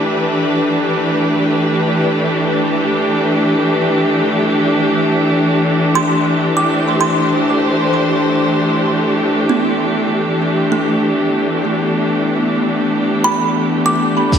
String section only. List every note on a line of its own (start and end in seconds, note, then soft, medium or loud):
0.00 14.32 E3 medium
0.00 14.39 A3 medium
0.00 14.39 D4 medium
0.00 14.39 G4 medium
0.00 4.53 B4 medium
6.70 9.43 C5 medium
11.07 14.39 B3 medium
14.33 14.39 E3 medium